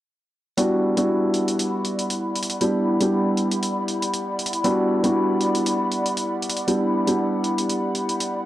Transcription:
0.57 0.94 G3 medium
0.57 0.94 B3 medium
0.57 0.94 D4 medium
0.57 8.42 E4 medium
0.57 0.94 E4 medium
0.57 0.94 F#4 loud
0.57 8.42 D5 medium
0.57 8.46 F#5 medium
0.57 8.42 B5 medium
0.57 closed hi-hat medium
0.97 2.58 G3 medium
0.97 2.58 B3 medium
0.97 2.58 D4 medium
0.97 2.58 E4 medium
0.97 2.59 F#4 medium
0.97 closed hi-hat medium
1.34 closed hi-hat soft
1.48 closed hi-hat medium
1.59 closed hi-hat medium
1.85 closed hi-hat soft
1.99 closed hi-hat medium
2.10 closed hi-hat medium
2.35 closed hi-hat soft
2.43 closed hi-hat medium
2.50 closed hi-hat medium
2.61 2.97 G3 medium
2.61 2.97 B3 medium
2.61 2.97 D4 medium
2.61 2.97 E4 medium
2.61 2.97 G4 medium
2.61 closed hi-hat medium
3.00 4.61 G3 medium
3.00 4.62 B3 medium
3.00 4.62 D4 medium
3.00 4.62 E4 medium
3.00 4.62 G4 medium
3.00 closed hi-hat medium
3.37 closed hi-hat soft
3.51 closed hi-hat soft
3.63 closed hi-hat medium
3.88 closed hi-hat soft
4.02 closed hi-hat soft
4.13 closed hi-hat medium
4.39 closed hi-hat soft
4.46 closed hi-hat medium
4.53 closed hi-hat medium
4.64 5.00 G3 medium
4.64 5.01 B3 medium
4.64 5.01 D4 medium
4.64 5.01 E4 medium
4.64 5.01 F#4 loud
4.64 closed hi-hat medium
5.03 6.65 G3 medium
5.03 6.65 B3 medium
5.03 6.65 D4 medium
5.03 6.65 E4 medium
5.03 6.65 F#4 medium
5.03 closed hi-hat soft
5.41 closed hi-hat soft
5.55 closed hi-hat soft
5.66 closed hi-hat medium
5.92 closed hi-hat soft
6.06 closed hi-hat soft
6.17 closed hi-hat medium
6.42 closed hi-hat soft
6.49 closed hi-hat medium
6.57 closed hi-hat soft
6.67 7.04 G3 medium
6.67 7.04 B3 medium
6.67 7.04 D4 medium
6.67 7.04 E4 medium
6.67 7.04 G4 medium
6.67 closed hi-hat medium
7.07 8.44 G3 medium
7.07 8.44 B3 medium
7.07 8.44 D4 medium
7.07 8.45 E4 medium
7.07 8.45 G4 medium
7.07 closed hi-hat soft
7.44 closed hi-hat soft
7.58 closed hi-hat soft
7.70 closed hi-hat medium
7.95 closed hi-hat soft
8.09 closed hi-hat soft
8.20 closed hi-hat medium

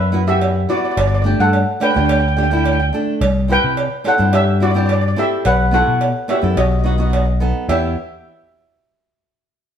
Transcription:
0.00 0.66 F#2 medium
0.00 0.25 B4 medium
0.00 0.27 E5 medium
0.12 0.21 B3 medium
0.12 0.21 E4 medium
0.12 0.22 F#4 medium
0.27 0.52 B3 medium
0.27 0.53 E4 medium
0.27 0.53 F#4 medium
0.27 0.67 G4 medium
0.27 0.71 E5 medium
0.41 cowbell medium
0.69 0.97 B3 medium
0.69 0.97 E4 medium
0.69 0.76 F#4 medium
0.69 0.98 F#4 medium
0.69 0.76 D5 medium
0.77 0.83 D5 medium
0.85 0.90 D5 medium
0.91 0.98 D5 medium
0.97 1.33 G1 loud
0.97 1.06 D5 medium
0.97 cowbell loud
1.07 1.13 D5 medium
1.15 1.21 D5 medium
1.22 1.58 A3 medium
1.22 1.59 D4 medium
1.22 1.29 D5 medium
1.26 1.59 G4 medium
1.40 1.63 G2 medium
1.40 1.79 A4 medium
1.40 1.83 F#5 loud
1.53 cowbell medium
1.80 1.89 A3 medium
1.80 1.89 D4 medium
1.80 1.90 A4 medium
1.80 1.89 B4 medium
1.80 1.89 G5 loud
1.80 cowbell medium
1.91 2.20 A3 medium
1.91 1.96 G5 medium
1.95 2.90 D2 medium
1.95 2.20 D4 medium
1.95 2.21 G4 medium
1.95 2.04 G5 medium
2.05 2.11 G5 medium
2.09 2.19 G5 medium
2.09 cowbell medium
2.20 2.26 G5 medium
2.28 2.34 G5 medium
2.37 2.45 A3 medium
2.37 2.46 D4 medium
2.37 2.46 G4 medium
2.37 2.42 G5 medium
2.43 2.49 G5 medium
2.50 2.76 A3 medium
2.50 2.77 D4 medium
2.50 2.77 E4 medium
2.50 2.56 G5 medium
2.57 2.63 G5 medium
2.64 2.71 G5 medium
2.64 cowbell medium
2.72 2.78 G5 medium
2.80 2.86 G5 medium
2.93 3.21 A3 medium
2.93 3.21 D4 medium
2.93 3.22 A4 medium
3.21 3.57 C2 loud
3.21 cowbell medium
3.48 3.82 C4 medium
3.48 3.83 E4 medium
3.48 3.83 G4 medium
3.48 4.02 B4 medium
3.53 4.08 G5 loud
3.64 3.87 C3 medium
3.77 cowbell medium
4.04 4.13 C4 medium
4.04 4.14 E4 medium
4.04 4.14 G4 medium
4.04 4.32 A4 medium
4.04 4.35 F#5 loud
4.04 cowbell medium
4.18 5.14 G2 medium
4.18 4.44 C4 medium
4.18 4.44 E4 medium
4.18 4.45 G4 medium
4.33 4.59 G4 medium
4.33 4.63 E5 loud
4.33 cowbell medium
4.60 4.69 C4 medium
4.60 4.70 E4 medium
4.60 4.70 F#4 medium
4.60 4.69 F#4 medium
4.60 4.69 D5 medium
4.71 5.00 C4 medium
4.71 4.77 D5 medium
4.75 5.00 E4 medium
4.75 5.01 G4 medium
4.75 4.84 D5 medium
4.86 4.92 D5 medium
4.86 cowbell medium
4.93 4.99 D5 medium
5.01 5.07 D5 medium
5.08 5.14 D5 medium
5.16 5.45 C4 medium
5.16 5.45 E4 medium
5.16 5.44 G4 medium
5.16 5.45 A4 medium
5.16 5.47 E5 medium
5.45 5.81 B1 loud
5.45 5.72 B4 medium
5.45 5.73 F#5 loud
5.45 cowbell medium
5.71 6.06 B3 medium
5.71 6.06 E4 medium
5.71 6.07 F#4 medium
5.71 6.26 A4 medium
5.71 6.31 F#5 medium
5.88 6.11 B2 medium
6.01 cowbell medium
6.28 6.37 B3 medium
6.28 6.37 E4 medium
6.28 6.38 F#4 medium
6.28 6.56 G4 medium
6.28 6.58 E5 medium
6.28 cowbell medium
6.42 6.55 F#2 medium
6.42 6.56 B3 medium
6.42 6.57 E4 medium
6.42 6.57 A4 medium
6.57 7.51 B1 loud
6.57 6.64 F#4 medium
6.57 6.63 D#5 medium
6.57 cowbell loud
6.64 6.70 D#5 medium
6.71 6.78 D#5 medium
6.79 6.86 D#5 soft
6.84 6.93 B3 medium
6.84 6.93 D#4 medium
6.84 6.94 F#4 medium
6.84 6.94 D#5 medium
6.95 7.24 B3 medium
6.95 7.24 D#4 medium
6.95 7.00 D#5 soft
7.00 7.24 F#4 medium
7.00 7.08 D#5 medium
7.10 7.16 D#5 soft
7.10 cowbell medium
7.17 7.24 D#5 medium
7.25 7.32 D#5 medium
7.40 7.68 B3 medium
7.40 7.69 D#4 medium
7.40 7.69 A4 medium
7.69 7.95 E2 medium
7.69 7.95 B3 medium
7.69 7.95 E4 medium
7.69 7.95 G4 medium
7.69 7.95 E5 medium
7.69 cowbell medium

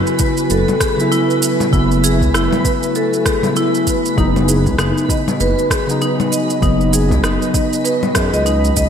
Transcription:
0.00 0.16 C#3 medium
0.00 0.16 F#3 medium
0.00 4.16 F#3 medium
0.00 4.18 A3 medium
0.00 0.17 B3 medium
0.00 0.18 E4 loud
0.00 8.89 F#4 medium
0.00 8.89 B4 medium
0.00 8.89 G#5 medium
0.07 shaker soft
0.15 0.42 C#3 medium
0.15 4.19 E5 medium
0.15 shaker medium
0.20 0.42 F#3 medium
0.20 0.43 B3 medium
0.20 0.43 E4 medium
0.20 0.37 B4 medium
0.20 kick loud
0.37 shaker soft
0.50 0.64 F#1 medium
0.50 0.80 A4 medium
0.50 shaker soft
0.68 low conga medium
0.68 shaker soft
0.81 0.98 G#4 medium
0.81 kick medium
0.81 cross-stick medium
0.81 shaker medium
0.97 1.69 C#3 medium
0.97 1.69 F#3 medium
0.97 1.70 B3 medium
0.97 shaker soft
1.01 1.71 E4 medium
1.12 1.22 E4 medium
1.12 shaker soft
1.30 shaker soft
1.42 1.60 B4 medium
1.42 shaker medium
1.60 low conga medium
1.60 shaker soft
1.71 2.23 F#1 loud
1.71 2.61 C#3 loud
1.71 2.61 F#3 medium
1.71 2.62 B3 medium
1.71 2.02 E4 loud
1.71 kick loud
1.71 shaker soft
1.75 2.63 E4 loud
1.91 shaker soft
2.04 2.21 G#4 medium
2.04 shaker medium
2.21 2.31 C#2 loud
2.21 kick medium
2.21 shaker soft
2.34 2.48 F#1 loud
2.34 2.44 E4 medium
2.34 cross-stick medium
2.34 shaker soft
2.53 low conga medium
2.53 shaker soft
2.64 2.87 C#3 medium
2.64 2.87 F#3 medium
2.64 2.88 B3 medium
2.64 2.88 E4 medium
2.64 2.82 B4 medium
2.64 kick medium
2.64 shaker medium
2.83 shaker soft
2.95 3.25 A4 medium
2.95 shaker soft
3.13 shaker soft
3.26 3.43 G#4 medium
3.26 kick medium
3.26 cross-stick medium
3.26 shaker medium
3.42 4.14 C#3 medium
3.42 4.14 F#3 medium
3.42 4.15 B3 medium
3.42 low conga medium
3.42 shaker soft
3.46 4.16 E4 medium
3.56 3.67 E4 medium
3.56 shaker soft
3.75 shaker soft
3.87 4.04 B4 medium
3.87 kick medium
3.87 shaker medium
4.06 shaker soft
4.16 4.68 F#1 loud
4.16 5.06 C#3 medium
4.16 5.06 F#3 medium
4.16 8.89 F#3 medium
4.16 5.07 B3 medium
4.16 4.47 D#4 medium
4.16 kick loud
4.16 shaker soft
4.20 5.08 D#4 loud
4.36 low conga medium
4.36 shaker soft
4.48 4.66 G#4 loud
4.48 shaker medium
4.66 4.76 C#2 medium
4.66 kick medium
4.66 shaker soft
4.78 4.92 F#1 loud
4.78 4.90 D#4 loud
4.78 cross-stick medium
4.78 shaker soft
4.98 shaker soft
5.05 5.32 C#3 medium
5.05 5.32 F#3 medium
5.05 8.89 D#5 medium
5.09 5.32 B3 medium
5.09 5.32 D#4 medium
5.09 5.27 D#5 medium
5.09 kick medium
5.09 shaker medium
5.28 low conga medium
5.28 shaker soft
5.40 5.54 F#1 medium
5.40 5.70 B4 loud
5.40 shaker soft
5.59 shaker soft
5.71 5.88 G#4 loud
5.71 kick medium
5.71 cross-stick medium
5.71 shaker medium
5.87 6.59 C#3 medium
5.87 6.59 F#3 medium
5.87 6.60 B3 medium
5.87 6.61 D#4 loud
5.87 shaker soft
6.02 6.12 D#4 medium
6.02 shaker soft
6.20 low conga medium
6.20 shaker soft
6.32 6.49 D#5 medium
6.32 shaker medium
6.50 shaker soft
6.60 7.13 F#1 loud
6.60 7.50 C#3 loud
6.60 7.51 F#3 medium
6.60 7.51 B3 medium
6.60 6.92 D#4 loud
6.60 7.52 D#4 loud
6.60 kick loud
6.60 shaker soft
6.81 shaker soft
6.93 7.10 G#4 loud
6.93 shaker medium
7.11 7.20 C#2 medium
7.11 kick medium
7.11 low conga medium
7.11 shaker soft
7.24 7.37 F#1 loud
7.24 7.34 D#4 medium
7.24 cross-stick medium
7.24 shaker soft
7.42 shaker soft
7.53 7.76 C#3 medium
7.53 7.77 F#3 medium
7.53 7.77 B3 medium
7.53 7.77 D#4 medium
7.53 7.71 D#5 medium
7.53 kick loud
7.53 shaker medium
7.73 shaker soft
7.85 8.01 B4 loud
7.85 shaker soft
8.03 low conga medium
8.03 shaker soft
8.15 8.29 F#2 loud
8.15 8.33 G#4 medium
8.15 kick medium
8.15 cross-stick medium
8.15 shaker medium
8.33 8.71 C#2 medium
8.33 8.45 D#5 loud
8.33 shaker soft
8.46 8.62 D#4 medium
8.46 shaker soft
8.64 shaker soft
8.75 8.89 C#2 medium
8.75 8.89 C#3 medium
8.75 8.89 F#3 medium
8.75 8.89 B3 medium
8.75 8.89 D#4 medium
8.75 8.89 D#5 medium
8.75 kick medium
8.75 shaker medium

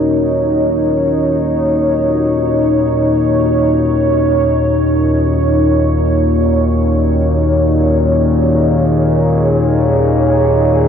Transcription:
0.00 10.88 D#2 medium
0.00 10.88 A#2 medium
0.00 10.88 D#4 medium
0.00 8.34 F#4 medium
0.00 10.88 A#4 medium
0.00 10.51 C#5 medium
7.37 10.88 G#4 medium

